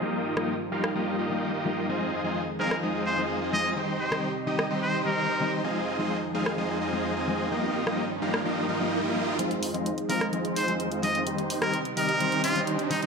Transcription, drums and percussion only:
0.37 cross-stick medium
0.84 cross-stick medium
2.71 cross-stick medium
4.12 cross-stick medium
4.59 cross-stick medium
6.46 cross-stick medium
7.87 cross-stick medium
8.34 cross-stick medium
9.39 closed hi-hat medium
9.51 closed hi-hat soft
9.63 open hi-hat loud
9.74 closed hi-hat soft
9.86 closed hi-hat medium
9.98 closed hi-hat soft
10.10 open hi-hat medium
10.21 cross-stick medium
10.21 closed hi-hat soft
10.33 closed hi-hat medium
10.45 closed hi-hat soft
10.56 open hi-hat loud
10.68 closed hi-hat soft
10.80 closed hi-hat medium
10.92 closed hi-hat soft
11.03 open hi-hat medium
11.15 closed hi-hat soft
11.27 closed hi-hat medium
11.38 closed hi-hat soft
11.50 open hi-hat loud
11.62 cross-stick medium
11.62 closed hi-hat soft
11.74 closed hi-hat medium
11.85 closed hi-hat soft
11.97 open hi-hat medium
12.09 closed hi-hat soft
12.20 closed hi-hat medium
12.32 closed hi-hat soft
12.44 open hi-hat loud
12.56 closed hi-hat soft
12.67 closed hi-hat medium
12.79 closed hi-hat soft
12.91 open hi-hat medium
13.02 closed hi-hat soft

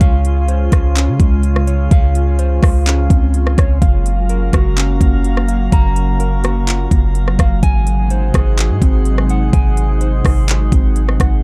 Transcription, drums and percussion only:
0.01 kick loud
0.01 closed hi-hat medium
0.25 closed hi-hat medium
0.48 closed hi-hat medium
0.72 kick medium
0.72 cross-stick loud
0.72 closed hi-hat medium
0.96 clap loud
0.96 closed hi-hat medium
1.20 kick loud
1.20 closed hi-hat medium
1.43 closed hi-hat medium
1.56 cross-stick loud
1.67 closed hi-hat medium
1.91 kick loud
1.91 closed hi-hat medium
2.15 closed hi-hat medium
2.39 closed hi-hat medium
2.63 kick medium
2.63 cross-stick loud
2.63 open hi-hat medium
2.87 clap loud
2.87 closed hi-hat medium
3.10 kick loud
3.10 closed hi-hat medium
3.34 closed hi-hat medium
3.47 cross-stick loud
3.58 kick medium
3.58 cross-stick loud
3.58 closed hi-hat medium
3.82 kick loud
3.82 closed hi-hat medium
4.06 closed hi-hat medium
4.29 closed hi-hat medium
4.53 kick medium
4.53 cross-stick loud
4.53 closed hi-hat medium
4.77 clap loud
4.77 closed hi-hat medium
5.01 kick loud
5.01 closed hi-hat medium
5.24 closed hi-hat medium
5.37 cross-stick loud
5.48 closed hi-hat medium
5.72 kick loud
5.72 closed hi-hat medium
5.96 closed hi-hat medium
6.20 closed hi-hat medium
6.44 cross-stick loud
6.44 closed hi-hat medium
6.68 clap loud
6.68 closed hi-hat medium
6.91 kick loud
6.91 closed hi-hat medium
7.15 closed hi-hat medium
7.28 cross-stick medium
7.39 kick medium
7.39 cross-stick loud
7.39 closed hi-hat medium
7.63 kick loud
7.63 closed hi-hat medium
7.87 closed hi-hat medium
8.10 closed hi-hat medium
8.34 kick medium
8.34 cross-stick loud
8.34 closed hi-hat medium
8.58 clap loud
8.58 closed hi-hat medium
8.82 kick loud
8.82 closed hi-hat medium
9.05 closed hi-hat medium
9.18 cross-stick loud
9.29 closed hi-hat medium
9.53 kick loud
9.53 closed hi-hat medium
9.77 closed hi-hat medium
10.01 closed hi-hat medium
10.25 kick medium
10.25 cross-stick loud
10.25 open hi-hat medium
10.49 clap loud
10.49 closed hi-hat medium
10.72 kick loud
10.72 closed hi-hat medium
10.96 closed hi-hat medium
11.09 cross-stick medium
11.20 kick medium
11.20 cross-stick loud
11.20 closed hi-hat medium

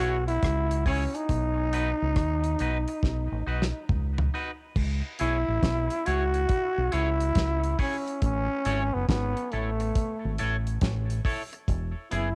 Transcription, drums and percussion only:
0.00 closed hi-hat medium
0.28 closed hi-hat soft
0.43 kick loud
0.43 cross-stick loud
0.43 closed hi-hat medium
0.71 closed hi-hat medium
0.86 kick medium
0.86 open hi-hat medium
1.15 closed hi-hat soft
1.29 kick loud
1.29 closed hi-hat medium
1.73 closed hi-hat medium
2.16 kick loud
2.16 cross-stick loud
2.16 closed hi-hat medium
2.44 closed hi-hat soft
2.59 closed hi-hat medium
2.88 closed hi-hat medium
3.03 kick loud
3.03 snare medium
3.62 snare medium
3.89 kick loud
3.89 mid tom medium
4.18 floor tom loud
4.76 kick loud
4.76 crash medium
5.19 closed hi-hat medium
5.63 kick loud
5.63 snare loud
5.63 closed hi-hat medium
5.90 closed hi-hat medium
6.06 closed hi-hat medium
6.34 closed hi-hat medium
6.49 kick loud
6.49 closed hi-hat medium
6.92 closed hi-hat medium
7.21 closed hi-hat medium
7.35 kick loud
7.35 snare loud
7.35 closed hi-hat loud
7.64 closed hi-hat medium
7.79 kick loud
7.79 open hi-hat medium
8.08 closed hi-hat medium
8.22 kick loud
8.22 closed hi-hat medium
8.65 closed hi-hat medium
9.09 kick loud
9.09 snare loud
9.09 closed hi-hat medium
9.37 closed hi-hat medium
9.52 closed hi-hat medium
9.80 closed hi-hat medium
9.95 kick loud
9.95 closed hi-hat medium
10.38 closed hi-hat medium
10.67 closed hi-hat soft
10.81 kick loud
10.81 snare loud
10.81 closed hi-hat loud
11.10 closed hi-hat medium
11.25 kick loud
11.25 open hi-hat medium
11.53 closed hi-hat soft
11.68 kick loud
11.68 closed hi-hat medium
12.12 closed hi-hat medium

